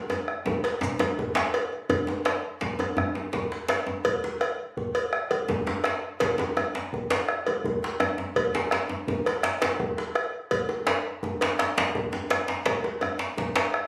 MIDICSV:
0, 0, Header, 1, 5, 480
1, 0, Start_track
1, 0, Tempo, 358852
1, 2540, Time_signature, 12, 3, 24, 8
1, 18552, End_track
2, 0, Start_track
2, 0, Title_t, "Bombo"
2, 374, Note_on_c, 9, 37, 84
2, 508, Note_off_c, 9, 37, 0
2, 620, Note_on_c, 9, 43, 84
2, 753, Note_off_c, 9, 43, 0
2, 1345, Note_on_c, 9, 37, 33
2, 1478, Note_off_c, 9, 37, 0
2, 1585, Note_on_c, 9, 43, 92
2, 1718, Note_off_c, 9, 43, 0
2, 1827, Note_on_c, 9, 37, 80
2, 1961, Note_off_c, 9, 37, 0
2, 2072, Note_on_c, 9, 37, 34
2, 2206, Note_off_c, 9, 37, 0
2, 2315, Note_on_c, 9, 37, 36
2, 2449, Note_off_c, 9, 37, 0
2, 2547, Note_on_c, 9, 43, 92
2, 2681, Note_off_c, 9, 43, 0
2, 3019, Note_on_c, 9, 37, 91
2, 3152, Note_off_c, 9, 37, 0
2, 3507, Note_on_c, 9, 43, 79
2, 3641, Note_off_c, 9, 43, 0
2, 3988, Note_on_c, 9, 37, 80
2, 4121, Note_off_c, 9, 37, 0
2, 4468, Note_on_c, 9, 37, 25
2, 4468, Note_on_c, 9, 43, 76
2, 4602, Note_off_c, 9, 37, 0
2, 4602, Note_off_c, 9, 43, 0
2, 4705, Note_on_c, 9, 37, 28
2, 4839, Note_off_c, 9, 37, 0
2, 4949, Note_on_c, 9, 37, 84
2, 5083, Note_off_c, 9, 37, 0
2, 5192, Note_on_c, 9, 37, 30
2, 5326, Note_off_c, 9, 37, 0
2, 5426, Note_on_c, 9, 43, 77
2, 5560, Note_off_c, 9, 43, 0
2, 5899, Note_on_c, 9, 37, 83
2, 6033, Note_off_c, 9, 37, 0
2, 6379, Note_on_c, 9, 43, 86
2, 6513, Note_off_c, 9, 43, 0
2, 6858, Note_on_c, 9, 37, 80
2, 6992, Note_off_c, 9, 37, 0
2, 7345, Note_on_c, 9, 37, 27
2, 7345, Note_on_c, 9, 43, 86
2, 7479, Note_off_c, 9, 37, 0
2, 7479, Note_off_c, 9, 43, 0
2, 7585, Note_on_c, 9, 37, 28
2, 7719, Note_off_c, 9, 37, 0
2, 7815, Note_on_c, 9, 37, 99
2, 7949, Note_off_c, 9, 37, 0
2, 8071, Note_on_c, 9, 37, 33
2, 8205, Note_off_c, 9, 37, 0
2, 8308, Note_on_c, 9, 43, 101
2, 8442, Note_off_c, 9, 43, 0
2, 8789, Note_on_c, 9, 37, 93
2, 8923, Note_off_c, 9, 37, 0
2, 9266, Note_on_c, 9, 43, 85
2, 9399, Note_off_c, 9, 43, 0
2, 9744, Note_on_c, 9, 37, 92
2, 9878, Note_off_c, 9, 37, 0
2, 10222, Note_on_c, 9, 37, 27
2, 10222, Note_on_c, 9, 43, 84
2, 10356, Note_off_c, 9, 37, 0
2, 10356, Note_off_c, 9, 43, 0
2, 10471, Note_on_c, 9, 37, 26
2, 10605, Note_off_c, 9, 37, 0
2, 10705, Note_on_c, 9, 37, 98
2, 10839, Note_off_c, 9, 37, 0
2, 10952, Note_on_c, 9, 37, 32
2, 11086, Note_off_c, 9, 37, 0
2, 11180, Note_on_c, 9, 43, 87
2, 11314, Note_off_c, 9, 43, 0
2, 11653, Note_on_c, 9, 37, 85
2, 11787, Note_off_c, 9, 37, 0
2, 12139, Note_on_c, 9, 43, 88
2, 12273, Note_off_c, 9, 43, 0
2, 12384, Note_on_c, 9, 37, 23
2, 12518, Note_off_c, 9, 37, 0
2, 12618, Note_on_c, 9, 37, 89
2, 12751, Note_off_c, 9, 37, 0
2, 12863, Note_on_c, 9, 37, 27
2, 12997, Note_off_c, 9, 37, 0
2, 13101, Note_on_c, 9, 37, 24
2, 13101, Note_on_c, 9, 43, 78
2, 13235, Note_off_c, 9, 37, 0
2, 13235, Note_off_c, 9, 43, 0
2, 13341, Note_on_c, 9, 37, 27
2, 13475, Note_off_c, 9, 37, 0
2, 13586, Note_on_c, 9, 37, 94
2, 13720, Note_off_c, 9, 37, 0
2, 14066, Note_on_c, 9, 43, 82
2, 14200, Note_off_c, 9, 43, 0
2, 14534, Note_on_c, 9, 37, 88
2, 14668, Note_off_c, 9, 37, 0
2, 15016, Note_on_c, 9, 43, 77
2, 15149, Note_off_c, 9, 43, 0
2, 15505, Note_on_c, 9, 37, 81
2, 15639, Note_off_c, 9, 37, 0
2, 15985, Note_on_c, 9, 37, 25
2, 15985, Note_on_c, 9, 43, 84
2, 16119, Note_off_c, 9, 37, 0
2, 16119, Note_off_c, 9, 43, 0
2, 16231, Note_on_c, 9, 37, 28
2, 16364, Note_off_c, 9, 37, 0
2, 16469, Note_on_c, 9, 37, 93
2, 16603, Note_off_c, 9, 37, 0
2, 16710, Note_on_c, 9, 37, 28
2, 16844, Note_off_c, 9, 37, 0
2, 16950, Note_on_c, 9, 43, 90
2, 17084, Note_off_c, 9, 43, 0
2, 17424, Note_on_c, 9, 37, 93
2, 17558, Note_off_c, 9, 37, 0
2, 17901, Note_on_c, 9, 43, 87
2, 18035, Note_off_c, 9, 43, 0
2, 18379, Note_on_c, 9, 37, 89
2, 18512, Note_off_c, 9, 37, 0
2, 18552, End_track
3, 0, Start_track
3, 0, Title_t, "Djembe"
3, 130, Note_on_c, 9, 63, 91
3, 264, Note_off_c, 9, 63, 0
3, 611, Note_on_c, 9, 63, 93
3, 632, Note_on_c, 9, 64, 78
3, 745, Note_off_c, 9, 63, 0
3, 766, Note_off_c, 9, 64, 0
3, 866, Note_on_c, 9, 62, 61
3, 1000, Note_off_c, 9, 62, 0
3, 1085, Note_on_c, 9, 63, 101
3, 1219, Note_off_c, 9, 63, 0
3, 1330, Note_on_c, 9, 63, 112
3, 1349, Note_off_c, 9, 63, 0
3, 1349, Note_on_c, 9, 62, 25
3, 1349, Note_on_c, 9, 63, 60
3, 1483, Note_off_c, 9, 62, 0
3, 1483, Note_off_c, 9, 63, 0
3, 1591, Note_on_c, 9, 64, 85
3, 1725, Note_off_c, 9, 64, 0
3, 1806, Note_on_c, 9, 62, 90
3, 1834, Note_off_c, 9, 62, 0
3, 1834, Note_on_c, 9, 62, 70
3, 1967, Note_off_c, 9, 62, 0
3, 2311, Note_on_c, 9, 62, 25
3, 2444, Note_off_c, 9, 62, 0
3, 2535, Note_on_c, 9, 64, 103
3, 2551, Note_off_c, 9, 64, 0
3, 2551, Note_on_c, 9, 64, 60
3, 2685, Note_off_c, 9, 64, 0
3, 2772, Note_on_c, 9, 63, 80
3, 2788, Note_off_c, 9, 63, 0
3, 2788, Note_on_c, 9, 62, 45
3, 2788, Note_on_c, 9, 63, 50
3, 2922, Note_off_c, 9, 62, 0
3, 2922, Note_off_c, 9, 63, 0
3, 3013, Note_on_c, 9, 62, 76
3, 3147, Note_off_c, 9, 62, 0
3, 3491, Note_on_c, 9, 62, 70
3, 3505, Note_off_c, 9, 62, 0
3, 3505, Note_on_c, 9, 62, 19
3, 3505, Note_on_c, 9, 64, 65
3, 3639, Note_off_c, 9, 62, 0
3, 3639, Note_off_c, 9, 64, 0
3, 3730, Note_on_c, 9, 63, 73
3, 3737, Note_on_c, 9, 62, 40
3, 3864, Note_off_c, 9, 63, 0
3, 3871, Note_off_c, 9, 62, 0
3, 3969, Note_on_c, 9, 64, 94
3, 4102, Note_off_c, 9, 64, 0
3, 4215, Note_on_c, 9, 63, 79
3, 4218, Note_off_c, 9, 63, 0
3, 4218, Note_on_c, 9, 63, 49
3, 4352, Note_off_c, 9, 63, 0
3, 4454, Note_on_c, 9, 62, 72
3, 4463, Note_on_c, 9, 64, 69
3, 4587, Note_off_c, 9, 62, 0
3, 4597, Note_off_c, 9, 64, 0
3, 4707, Note_on_c, 9, 62, 54
3, 4840, Note_off_c, 9, 62, 0
3, 4929, Note_on_c, 9, 62, 76
3, 5063, Note_off_c, 9, 62, 0
3, 5171, Note_on_c, 9, 63, 72
3, 5305, Note_off_c, 9, 63, 0
3, 5428, Note_on_c, 9, 64, 75
3, 5562, Note_off_c, 9, 64, 0
3, 5672, Note_on_c, 9, 62, 61
3, 5672, Note_on_c, 9, 63, 54
3, 5806, Note_off_c, 9, 62, 0
3, 5806, Note_off_c, 9, 63, 0
3, 6386, Note_on_c, 9, 62, 23
3, 6386, Note_on_c, 9, 64, 64
3, 6520, Note_off_c, 9, 62, 0
3, 6520, Note_off_c, 9, 64, 0
3, 7103, Note_on_c, 9, 63, 60
3, 7237, Note_off_c, 9, 63, 0
3, 7337, Note_on_c, 9, 63, 89
3, 7351, Note_on_c, 9, 64, 81
3, 7470, Note_off_c, 9, 63, 0
3, 7485, Note_off_c, 9, 64, 0
3, 7579, Note_on_c, 9, 63, 75
3, 7587, Note_on_c, 9, 62, 64
3, 7713, Note_off_c, 9, 63, 0
3, 7721, Note_off_c, 9, 62, 0
3, 7829, Note_on_c, 9, 62, 75
3, 7963, Note_off_c, 9, 62, 0
3, 8301, Note_on_c, 9, 62, 74
3, 8322, Note_on_c, 9, 64, 87
3, 8435, Note_off_c, 9, 62, 0
3, 8455, Note_off_c, 9, 64, 0
3, 8535, Note_on_c, 9, 63, 94
3, 8553, Note_off_c, 9, 63, 0
3, 8553, Note_on_c, 9, 62, 58
3, 8553, Note_on_c, 9, 63, 59
3, 8687, Note_off_c, 9, 62, 0
3, 8687, Note_off_c, 9, 63, 0
3, 8784, Note_on_c, 9, 63, 75
3, 8918, Note_off_c, 9, 63, 0
3, 9028, Note_on_c, 9, 62, 71
3, 9161, Note_off_c, 9, 62, 0
3, 9281, Note_on_c, 9, 62, 23
3, 9281, Note_on_c, 9, 64, 64
3, 9415, Note_off_c, 9, 62, 0
3, 9415, Note_off_c, 9, 64, 0
3, 9503, Note_on_c, 9, 62, 79
3, 9519, Note_off_c, 9, 62, 0
3, 9519, Note_on_c, 9, 62, 56
3, 9653, Note_off_c, 9, 62, 0
3, 10004, Note_on_c, 9, 63, 65
3, 10137, Note_off_c, 9, 63, 0
3, 10239, Note_on_c, 9, 64, 78
3, 10373, Note_off_c, 9, 64, 0
3, 10488, Note_on_c, 9, 62, 63
3, 10622, Note_off_c, 9, 62, 0
3, 10705, Note_on_c, 9, 63, 88
3, 10839, Note_off_c, 9, 63, 0
3, 10943, Note_on_c, 9, 63, 70
3, 11077, Note_off_c, 9, 63, 0
3, 11197, Note_on_c, 9, 64, 77
3, 11330, Note_off_c, 9, 64, 0
3, 11432, Note_on_c, 9, 62, 75
3, 11442, Note_off_c, 9, 62, 0
3, 11442, Note_on_c, 9, 62, 52
3, 11442, Note_on_c, 9, 63, 56
3, 11576, Note_off_c, 9, 62, 0
3, 11576, Note_off_c, 9, 63, 0
3, 11667, Note_on_c, 9, 62, 73
3, 11800, Note_off_c, 9, 62, 0
3, 11897, Note_on_c, 9, 63, 78
3, 12031, Note_off_c, 9, 63, 0
3, 12149, Note_on_c, 9, 63, 78
3, 12155, Note_on_c, 9, 64, 65
3, 12282, Note_off_c, 9, 63, 0
3, 12288, Note_off_c, 9, 64, 0
3, 12402, Note_on_c, 9, 62, 55
3, 12535, Note_off_c, 9, 62, 0
3, 12624, Note_on_c, 9, 62, 76
3, 12758, Note_off_c, 9, 62, 0
3, 12866, Note_on_c, 9, 62, 80
3, 12877, Note_on_c, 9, 63, 54
3, 13000, Note_off_c, 9, 62, 0
3, 13010, Note_off_c, 9, 63, 0
3, 13106, Note_on_c, 9, 62, 23
3, 13106, Note_on_c, 9, 64, 71
3, 13240, Note_off_c, 9, 62, 0
3, 13240, Note_off_c, 9, 64, 0
3, 13352, Note_on_c, 9, 62, 58
3, 13486, Note_off_c, 9, 62, 0
3, 14063, Note_on_c, 9, 64, 71
3, 14197, Note_off_c, 9, 64, 0
3, 14298, Note_on_c, 9, 62, 51
3, 14298, Note_on_c, 9, 63, 56
3, 14431, Note_off_c, 9, 62, 0
3, 14431, Note_off_c, 9, 63, 0
3, 14535, Note_on_c, 9, 62, 88
3, 14669, Note_off_c, 9, 62, 0
3, 15021, Note_on_c, 9, 62, 21
3, 15021, Note_on_c, 9, 64, 65
3, 15032, Note_on_c, 9, 63, 71
3, 15154, Note_off_c, 9, 62, 0
3, 15154, Note_off_c, 9, 64, 0
3, 15166, Note_off_c, 9, 63, 0
3, 15270, Note_on_c, 9, 62, 52
3, 15278, Note_off_c, 9, 62, 0
3, 15278, Note_on_c, 9, 62, 83
3, 15412, Note_off_c, 9, 62, 0
3, 15510, Note_on_c, 9, 62, 81
3, 15644, Note_off_c, 9, 62, 0
3, 15752, Note_on_c, 9, 63, 55
3, 15753, Note_on_c, 9, 62, 104
3, 15885, Note_off_c, 9, 63, 0
3, 15887, Note_off_c, 9, 62, 0
3, 15986, Note_on_c, 9, 64, 74
3, 16120, Note_off_c, 9, 64, 0
3, 16219, Note_on_c, 9, 63, 65
3, 16223, Note_on_c, 9, 62, 62
3, 16352, Note_off_c, 9, 63, 0
3, 16356, Note_off_c, 9, 62, 0
3, 16457, Note_on_c, 9, 62, 83
3, 16591, Note_off_c, 9, 62, 0
3, 16695, Note_on_c, 9, 62, 71
3, 16829, Note_off_c, 9, 62, 0
3, 16928, Note_on_c, 9, 62, 88
3, 16935, Note_on_c, 9, 64, 81
3, 17062, Note_off_c, 9, 62, 0
3, 17069, Note_off_c, 9, 64, 0
3, 17178, Note_on_c, 9, 62, 63
3, 17178, Note_on_c, 9, 63, 57
3, 17311, Note_off_c, 9, 62, 0
3, 17311, Note_off_c, 9, 63, 0
3, 17410, Note_on_c, 9, 63, 77
3, 17544, Note_off_c, 9, 63, 0
3, 17645, Note_on_c, 9, 62, 74
3, 17778, Note_off_c, 9, 62, 0
3, 17891, Note_on_c, 9, 62, 22
3, 17891, Note_on_c, 9, 64, 65
3, 17899, Note_off_c, 9, 62, 0
3, 17899, Note_on_c, 9, 62, 70
3, 18025, Note_off_c, 9, 64, 0
3, 18033, Note_off_c, 9, 62, 0
3, 18132, Note_on_c, 9, 62, 97
3, 18140, Note_off_c, 9, 62, 0
3, 18140, Note_on_c, 9, 62, 57
3, 18273, Note_off_c, 9, 62, 0
3, 18552, End_track
4, 0, Start_track
4, 0, Title_t, "Shekere"
4, 148, Note_on_c, 9, 82, 20
4, 282, Note_off_c, 9, 82, 0
4, 1105, Note_on_c, 9, 82, 64
4, 1239, Note_off_c, 9, 82, 0
4, 1353, Note_on_c, 9, 82, 18
4, 1487, Note_off_c, 9, 82, 0
4, 18552, End_track
5, 0, Start_track
5, 0, Title_t, "Drums"
5, 132, Note_on_c, 9, 56, 49
5, 266, Note_off_c, 9, 56, 0
5, 855, Note_on_c, 9, 56, 49
5, 989, Note_off_c, 9, 56, 0
5, 1340, Note_on_c, 9, 56, 55
5, 1474, Note_off_c, 9, 56, 0
5, 2060, Note_on_c, 9, 56, 56
5, 2193, Note_off_c, 9, 56, 0
5, 2539, Note_on_c, 9, 56, 57
5, 2673, Note_off_c, 9, 56, 0
5, 3022, Note_on_c, 9, 56, 48
5, 3156, Note_off_c, 9, 56, 0
5, 3743, Note_on_c, 9, 56, 48
5, 3877, Note_off_c, 9, 56, 0
5, 4935, Note_on_c, 9, 56, 48
5, 5068, Note_off_c, 9, 56, 0
5, 5414, Note_on_c, 9, 56, 64
5, 5548, Note_off_c, 9, 56, 0
5, 5897, Note_on_c, 9, 56, 51
5, 6030, Note_off_c, 9, 56, 0
5, 6618, Note_on_c, 9, 56, 49
5, 6752, Note_off_c, 9, 56, 0
5, 7099, Note_on_c, 9, 56, 50
5, 7233, Note_off_c, 9, 56, 0
5, 7808, Note_on_c, 9, 56, 46
5, 7941, Note_off_c, 9, 56, 0
5, 8296, Note_on_c, 9, 56, 60
5, 8430, Note_off_c, 9, 56, 0
5, 8785, Note_on_c, 9, 56, 47
5, 8918, Note_off_c, 9, 56, 0
5, 9506, Note_on_c, 9, 56, 46
5, 9640, Note_off_c, 9, 56, 0
5, 9985, Note_on_c, 9, 56, 43
5, 10119, Note_off_c, 9, 56, 0
5, 10700, Note_on_c, 9, 56, 45
5, 10833, Note_off_c, 9, 56, 0
5, 11185, Note_on_c, 9, 56, 53
5, 11319, Note_off_c, 9, 56, 0
5, 11666, Note_on_c, 9, 56, 42
5, 11799, Note_off_c, 9, 56, 0
5, 12391, Note_on_c, 9, 56, 48
5, 12524, Note_off_c, 9, 56, 0
5, 12863, Note_on_c, 9, 56, 49
5, 12996, Note_off_c, 9, 56, 0
5, 13581, Note_on_c, 9, 56, 51
5, 13715, Note_off_c, 9, 56, 0
5, 14058, Note_on_c, 9, 56, 59
5, 14192, Note_off_c, 9, 56, 0
5, 14552, Note_on_c, 9, 56, 45
5, 14685, Note_off_c, 9, 56, 0
5, 15263, Note_on_c, 9, 56, 45
5, 15397, Note_off_c, 9, 56, 0
5, 16463, Note_on_c, 9, 56, 50
5, 16597, Note_off_c, 9, 56, 0
5, 16937, Note_on_c, 9, 56, 54
5, 17070, Note_off_c, 9, 56, 0
5, 17405, Note_on_c, 9, 56, 42
5, 17538, Note_off_c, 9, 56, 0
5, 18140, Note_on_c, 9, 56, 51
5, 18273, Note_off_c, 9, 56, 0
5, 18552, End_track
0, 0, End_of_file